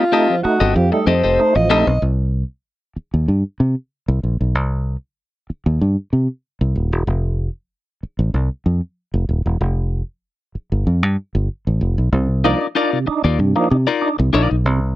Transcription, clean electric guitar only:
0.12 0.34 C4 medium
0.12 0.35 G4 loud
0.12 0.35 A4 loud
0.12 0.35 D#5 loud
0.44 muted clean electric guitar stroke soft
0.60 0.74 C4 soft
0.60 0.74 G4 medium
0.60 0.74 A4 medium
0.60 0.75 D#5 medium
0.75 muted clean electric guitar stroke soft
0.92 muted clean electric guitar stroke soft
1.07 1.23 C4 medium
1.07 1.23 G4 medium
1.07 1.23 A4 medium
1.07 1.22 D#5 medium
1.23 1.40 C4 soft
1.23 1.40 G4 medium
1.23 1.40 A4 medium
1.23 1.40 D#5 medium
1.56 muted clean electric guitar stroke medium
1.70 1.92 C4 medium
1.70 1.87 G4 medium
1.70 1.87 A4 medium
1.70 1.86 D#5 loud
1.87 muted clean electric guitar stroke soft
12.44 12.66 D#4 medium
12.44 12.67 F4 medium
12.44 12.67 A#4 medium
12.44 12.67 D5 medium
12.75 12.97 D#4 medium
12.75 12.98 F4 loud
12.75 12.98 A#4 loud
12.75 12.98 D5 loud
13.07 muted clean electric guitar stroke medium
13.24 13.38 D#4 soft
13.24 13.39 F4 soft
13.24 13.39 A#4 medium
13.24 13.39 D5 medium
13.39 muted clean electric guitar stroke soft
13.56 muted clean electric guitar stroke soft
13.87 14.08 D#4 medium
13.87 14.08 F4 medium
13.87 14.08 A#4 medium
13.87 14.08 D5 medium
14.19 muted clean electric guitar stroke medium
14.33 14.55 D#4 medium
14.33 14.50 F4 medium
14.33 14.50 A#4 medium
14.33 14.50 D5 medium
14.51 muted clean electric guitar stroke soft

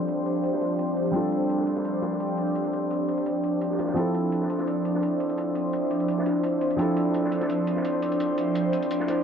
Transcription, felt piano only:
0.00 1.10 G3 medium
0.00 1.11 C4 medium
0.00 1.12 D4 medium
0.00 1.13 F4 medium
0.00 1.14 A4 medium
1.12 3.93 G3 medium
1.12 3.94 C4 medium
1.12 3.95 D4 medium
1.12 3.95 F4 medium
1.17 3.96 A4 medium
3.94 6.75 F3 medium
3.94 6.76 C4 medium
3.94 6.77 D4 medium
3.94 6.78 E4 medium
3.99 6.78 A4 medium
6.77 9.24 F3 medium
6.77 9.24 C4 medium
6.77 9.24 D4 medium
6.77 9.24 E4 medium
6.82 9.24 A4 medium

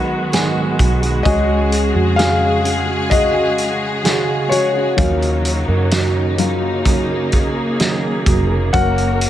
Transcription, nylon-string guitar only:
0.00 0.31 F#3 soft
0.00 0.32 B3 soft
0.00 0.32 D#4 soft
0.00 0.32 G#4 medium
0.32 0.79 G#2 medium
0.32 0.79 D#3 medium
0.32 0.77 F#3 medium
0.32 0.78 B3 medium
0.32 0.79 D#4 medium
0.32 0.80 G#4 loud
0.79 1.02 F#3 medium
0.79 1.03 B3 medium
0.79 1.01 D#4 medium
0.79 1.00 G#4 medium
1.01 1.25 F#3 soft
1.01 1.25 B3 soft
1.01 1.26 D#4 soft
1.01 1.25 G#4 soft
1.25 1.95 C#3 medium
1.25 1.95 G#3 medium
1.25 1.95 C#4 medium
1.25 1.95 F#4 medium
1.25 1.93 G#4 medium
1.94 2.17 C#4 soft
1.94 2.18 F#4 soft
1.94 2.18 G#4 soft
2.17 2.64 C#3 medium
2.17 2.62 G#3 medium
2.17 2.63 C#4 medium
2.17 2.64 F#4 medium
2.17 2.65 G#4 medium
2.63 2.87 G#3 medium
2.63 2.88 C#4 medium
2.63 2.86 F#4 medium
2.63 2.85 G#4 medium
2.86 3.10 C#4 soft
2.86 3.11 F#4 soft
2.86 3.10 G#4 soft
3.10 3.34 G#3 medium
3.10 3.34 C#4 medium
3.10 3.34 F#4 medium
3.10 3.32 G#4 medium
3.33 4.03 C#4 soft
3.33 4.03 F#4 soft
3.33 4.04 G#4 soft
4.03 4.50 C#3 medium
4.03 4.48 G#3 medium
4.03 4.49 C#4 medium
4.03 4.50 F#4 medium
4.03 4.51 G#4 medium
4.49 4.74 G#3 medium
4.49 4.74 C#4 medium
4.49 4.74 F#4 medium
4.49 4.72 G#4 medium
4.74 4.97 C#4 soft
4.74 4.97 F#4 soft
4.74 4.97 G#4 soft
4.97 5.68 D#3 medium
4.97 5.68 F#3 medium
4.97 5.68 C#4 medium
4.97 5.69 F#4 medium
4.97 5.67 A#4 medium
5.68 5.91 C#4 soft
5.68 5.91 F#4 soft
5.68 5.92 A#4 medium
5.91 6.38 D#3 medium
5.91 6.37 F#3 medium
5.91 6.38 C#4 medium
5.91 6.38 F#4 medium
5.91 6.39 A#4 medium
6.38 6.84 F#3 medium
6.38 6.85 C#4 medium
6.38 6.86 F#4 medium
6.38 6.87 A#4 medium
6.85 7.09 F#3 medium
6.85 7.09 C#4 medium
6.85 7.09 F#4 medium
6.85 7.07 A#4 medium
7.09 7.79 C#4 soft
7.09 7.79 F#4 soft
7.09 7.79 A#4 soft
7.79 8.26 D#3 medium
7.79 8.25 F#3 medium
7.79 8.26 C#4 medium
7.79 8.27 F#4 medium
7.79 8.27 A#4 medium
8.26 8.50 F#3 medium
8.26 8.50 C#4 medium
8.26 8.50 F#4 medium
8.26 8.48 A#4 medium
8.49 8.73 C#4 soft
8.49 8.74 F#4 soft
8.49 8.73 A#4 soft
8.74 9.30 F#3 medium
8.74 9.30 C#4 medium
8.74 9.30 F#4 medium
8.74 9.30 A#4 medium

